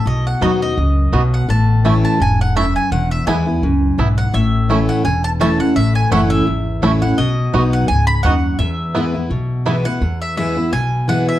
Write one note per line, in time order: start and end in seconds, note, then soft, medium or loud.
0.05 0.33 B1 medium
0.05 0.74 B2 medium
0.05 0.25 D#5 loud
0.27 0.41 F#5 medium
0.41 0.72 D#2 medium
0.41 0.60 F#3 medium
0.41 0.50 B3 medium
0.41 0.61 B3 medium
0.41 0.50 D#4 medium
0.41 0.61 D#4 medium
0.41 0.51 F#4 medium
0.41 0.60 F#4 medium
0.41 0.60 D#5 medium
0.61 0.78 D#4 soft
0.61 0.77 F#4 medium
0.61 1.35 D#5 medium
0.77 1.08 C#2 medium
0.77 1.11 F#2 medium
1.12 1.43 B1 loud
1.12 1.47 B2 medium
1.12 1.22 B3 medium
1.12 1.22 D#4 medium
1.12 1.22 F#4 medium
1.34 1.48 F#5 medium
1.48 2.03 A1 medium
1.48 2.17 A2 loud
1.48 2.01 A5 loud
1.85 2.18 E3 loud
1.85 1.93 A3 medium
1.85 2.19 A3 medium
1.85 1.94 C#4 medium
1.85 2.19 C#4 medium
1.85 2.19 E4 loud
1.85 1.94 E4 medium
2.05 2.21 A5 medium
2.20 2.75 E1 medium
2.20 2.54 G#2 medium
2.20 2.41 G#5 loud
2.41 2.56 F#5 medium
2.56 2.90 F#2 medium
2.56 2.65 A3 medium
2.56 2.65 C#4 medium
2.56 2.65 E4 medium
2.56 2.75 E5 medium
2.76 2.92 G#5 medium
2.91 3.18 E1 loud
2.91 3.60 E2 loud
2.91 3.11 F#5 loud
3.11 3.26 E5 medium
3.27 3.57 D#2 medium
3.27 3.45 E3 medium
3.27 3.46 G#3 loud
3.27 3.36 B3 medium
3.27 3.46 B3 medium
3.27 3.36 E4 medium
3.27 3.46 E4 loud
3.27 4.17 G#5 loud
3.47 3.63 B3 soft
3.47 3.62 E4 medium
3.62 3.93 C#2 medium
3.62 3.97 F#2 medium
3.98 4.28 B1 medium
3.98 4.32 G#2 medium
3.98 4.07 B3 medium
3.98 4.07 E4 medium
4.18 4.34 F#5 medium
4.34 4.88 A1 medium
4.34 5.01 A2 medium
4.34 4.91 E5 loud
4.69 5.03 E3 medium
4.69 4.78 A3 medium
4.69 5.04 A3 medium
4.69 4.78 C#4 medium
4.69 5.04 C#4 loud
4.69 4.78 E4 medium
4.69 5.04 E4 loud
4.89 5.04 F#5 medium
5.05 5.59 E1 medium
5.05 5.73 E2 medium
5.05 5.24 G#5 medium
5.24 5.29 A5 loud
5.40 5.59 E3 medium
5.40 5.59 A3 medium
5.40 5.49 A3 medium
5.40 5.59 C#4 loud
5.40 5.49 C#4 medium
5.40 5.58 E4 loud
5.40 5.49 E4 medium
5.40 5.60 A5 loud
5.59 5.76 C#4 soft
5.59 5.75 E4 medium
5.59 5.76 F#5 loud
5.76 6.03 A1 loud
5.76 6.44 A2 loud
5.76 5.95 E5 loud
5.95 6.10 G#5 loud
6.11 6.41 F#1 medium
6.11 6.45 E3 medium
6.11 6.45 A3 loud
6.11 6.20 A3 medium
6.11 6.20 C#4 medium
6.11 6.46 C#4 medium
6.11 6.20 E4 medium
6.11 6.46 E4 loud
6.11 6.30 F#5 loud
6.30 7.03 E5 loud
6.47 6.77 G#1 medium
6.47 7.15 E2 medium
6.82 7.13 A1 loud
6.82 7.01 E3 medium
6.82 7.01 A3 medium
6.82 6.91 A3 medium
6.82 7.01 C#4 medium
6.82 6.91 C#4 medium
6.82 7.00 E4 loud
6.82 6.91 E4 medium
7.02 7.18 C#4 soft
7.02 7.17 E4 medium
7.02 7.18 F#5 medium
7.18 7.45 B1 medium
7.18 7.86 B2 loud
7.18 7.69 D#5 loud
7.53 7.84 B1 loud
7.53 7.87 F#3 medium
7.53 7.62 B3 medium
7.53 7.88 B3 medium
7.53 7.62 D#4 medium
7.53 7.88 D#4 loud
7.53 7.62 F#4 medium
7.53 7.88 F#4 loud
7.73 7.88 F#5 medium
7.88 8.19 C#2 medium
7.88 8.23 G#2 medium
7.88 8.07 G#5 loud
8.07 8.22 B5 loud
8.23 8.54 D#2 medium
8.23 8.58 F#2 medium
8.23 8.33 B3 medium
8.23 8.33 D#4 medium
8.23 8.33 F#4 medium
8.23 8.57 F#5 loud
8.59 9.13 E2 loud
8.59 9.28 E2 loud
8.59 9.62 E5 loud
8.95 9.14 E3 medium
8.95 9.14 G#3 medium
8.95 9.03 B3 medium
8.95 9.14 B3 medium
8.95 9.04 E4 medium
8.95 9.13 E4 loud
9.14 9.31 B3 soft
9.14 9.30 E4 medium
9.30 9.85 B1 medium
9.30 9.99 B2 medium
9.66 9.85 E3 medium
9.66 9.85 G#3 medium
9.66 9.75 B3 medium
9.66 9.85 B3 medium
9.66 9.75 E4 medium
9.66 9.84 E4 loud
9.85 10.02 B3 soft
9.85 10.01 E4 medium
9.85 10.19 F#5 loud
10.01 10.56 E2 medium
10.01 10.70 E2 medium
10.22 10.36 E5 medium
10.37 10.56 E3 medium
10.37 10.56 G#3 medium
10.37 10.56 B3 medium
10.37 10.55 E4 loud
10.37 10.71 E5 medium
10.56 10.73 B3 soft
10.56 10.72 E4 medium
10.73 11.27 B1 medium
10.73 11.39 B2 medium
10.73 11.09 G#5 loud
11.08 11.39 E3 medium
11.08 11.39 G#3 medium
11.08 11.39 B3 medium
11.08 11.39 E4 loud
11.08 11.27 F#5 loud
11.29 11.39 E5 medium